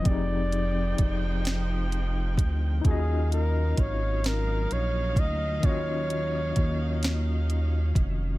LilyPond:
<<
  \new Staff \with { instrumentName = "Flugelhorn" } { \time 6/8 \key ees \minor \tempo 4. = 43 d''2 r4 | aes'8 bes'8 des''8 bes'8 des''8 ees''8 | des''2 r4 | }
  \new Staff \with { instrumentName = "Tine electric piano" } { \time 6/8 \key ees \minor <f c' ees' g' aes'>2. | <des' ees' f' ges' ees''>2. | <ees des' f' ges' ees''>2. | }
  \new Staff \with { instrumentName = "String section" } { \time 6/8 \key ees \minor <f c' ees' g''>2. | <ges bes des' ees' f''>2.~ | <ges bes des' ees' f''>2. | }
  \new Staff \with { instrumentName = "Analog synth bass" } { \clef bass \time 6/8 \key ees \minor f,,4 f,,4. d,8 | ees,4 aes,,4 bes,,8 d,8 | ees,4 ees,4. f,,8 | }
  \new DrumStaff \with { instrumentName = "Drums" } \drummode { \time 6/8 <hh bd>8 hh8 <hh bd>8 <hh sn>8 hh8 <hh bd>8 | <hh bd>8 hh8 <hh bd>8 <hh sn>8 hh8 <hh bd>8 | <hh bd>8 hh8 <hh bd>8 <hh sn>8 hh8 <hh bd>8 | }
>>